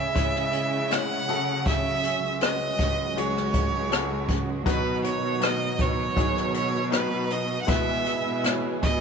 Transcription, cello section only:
0, 0, Header, 1, 2, 480
1, 0, Start_track
1, 0, Tempo, 754717
1, 1057, Time_signature, 4, 2, 24, 8
1, 5728, End_track
2, 0, Start_track
2, 0, Title_t, "Cello section"
2, 0, Program_c, 0, 48
2, 0, Note_on_c, 0, 49, 76
2, 84, Note_off_c, 0, 49, 0
2, 99, Note_on_c, 0, 49, 85
2, 792, Note_off_c, 0, 49, 0
2, 819, Note_on_c, 0, 49, 80
2, 1392, Note_off_c, 0, 49, 0
2, 1419, Note_on_c, 0, 37, 70
2, 1752, Note_off_c, 0, 37, 0
2, 1774, Note_on_c, 0, 37, 77
2, 1997, Note_off_c, 0, 37, 0
2, 2012, Note_on_c, 0, 37, 96
2, 2938, Note_off_c, 0, 37, 0
2, 2966, Note_on_c, 0, 47, 94
2, 3298, Note_off_c, 0, 47, 0
2, 3322, Note_on_c, 0, 47, 80
2, 3657, Note_off_c, 0, 47, 0
2, 3685, Note_on_c, 0, 47, 89
2, 3907, Note_off_c, 0, 47, 0
2, 3921, Note_on_c, 0, 47, 94
2, 4860, Note_off_c, 0, 47, 0
2, 4884, Note_on_c, 0, 47, 80
2, 5223, Note_off_c, 0, 47, 0
2, 5250, Note_on_c, 0, 47, 80
2, 5589, Note_off_c, 0, 47, 0
2, 5616, Note_on_c, 0, 47, 73
2, 5728, Note_off_c, 0, 47, 0
2, 5728, End_track
0, 0, End_of_file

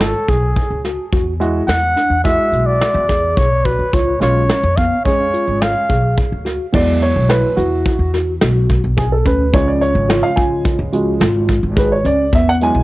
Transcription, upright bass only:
0, 0, Header, 1, 2, 480
1, 0, Start_track
1, 0, Tempo, 560224
1, 966, Time_signature, 5, 2, 24, 8
1, 10994, End_track
2, 0, Start_track
2, 0, Title_t, "Upright bass"
2, 0, Program_c, 0, 32
2, 0, Note_on_c, 0, 32, 83
2, 93, Note_off_c, 0, 32, 0
2, 243, Note_on_c, 0, 35, 76
2, 457, Note_off_c, 0, 35, 0
2, 604, Note_on_c, 0, 37, 73
2, 818, Note_off_c, 0, 37, 0
2, 964, Note_on_c, 0, 40, 79
2, 1392, Note_off_c, 0, 40, 0
2, 1440, Note_on_c, 0, 40, 90
2, 1656, Note_off_c, 0, 40, 0
2, 1799, Note_on_c, 0, 40, 74
2, 2016, Note_off_c, 0, 40, 0
2, 2161, Note_on_c, 0, 35, 82
2, 2377, Note_off_c, 0, 35, 0
2, 2521, Note_on_c, 0, 40, 91
2, 2844, Note_off_c, 0, 40, 0
2, 2890, Note_on_c, 0, 35, 87
2, 3209, Note_off_c, 0, 35, 0
2, 3248, Note_on_c, 0, 40, 69
2, 3356, Note_off_c, 0, 40, 0
2, 3369, Note_on_c, 0, 37, 80
2, 3583, Note_off_c, 0, 37, 0
2, 3608, Note_on_c, 0, 35, 80
2, 3822, Note_off_c, 0, 35, 0
2, 3970, Note_on_c, 0, 41, 92
2, 4184, Note_off_c, 0, 41, 0
2, 4329, Note_on_c, 0, 41, 74
2, 4543, Note_off_c, 0, 41, 0
2, 4693, Note_on_c, 0, 32, 85
2, 4905, Note_off_c, 0, 32, 0
2, 5052, Note_on_c, 0, 35, 75
2, 5265, Note_off_c, 0, 35, 0
2, 5416, Note_on_c, 0, 38, 71
2, 5627, Note_off_c, 0, 38, 0
2, 5773, Note_on_c, 0, 40, 82
2, 6092, Note_off_c, 0, 40, 0
2, 6135, Note_on_c, 0, 35, 82
2, 6346, Note_off_c, 0, 35, 0
2, 6488, Note_on_c, 0, 40, 86
2, 6703, Note_off_c, 0, 40, 0
2, 6845, Note_on_c, 0, 40, 74
2, 7167, Note_off_c, 0, 40, 0
2, 7212, Note_on_c, 0, 35, 90
2, 7531, Note_off_c, 0, 35, 0
2, 7572, Note_on_c, 0, 35, 81
2, 7891, Note_off_c, 0, 35, 0
2, 7930, Note_on_c, 0, 38, 92
2, 8143, Note_off_c, 0, 38, 0
2, 8170, Note_on_c, 0, 37, 88
2, 8489, Note_off_c, 0, 37, 0
2, 8525, Note_on_c, 0, 32, 95
2, 8740, Note_off_c, 0, 32, 0
2, 8887, Note_on_c, 0, 37, 85
2, 9100, Note_off_c, 0, 37, 0
2, 9244, Note_on_c, 0, 37, 85
2, 9564, Note_off_c, 0, 37, 0
2, 9601, Note_on_c, 0, 32, 87
2, 9922, Note_off_c, 0, 32, 0
2, 9965, Note_on_c, 0, 32, 84
2, 10284, Note_off_c, 0, 32, 0
2, 10321, Note_on_c, 0, 37, 80
2, 10535, Note_off_c, 0, 37, 0
2, 10560, Note_on_c, 0, 40, 90
2, 10880, Note_off_c, 0, 40, 0
2, 10920, Note_on_c, 0, 35, 97
2, 10994, Note_off_c, 0, 35, 0
2, 10994, End_track
0, 0, End_of_file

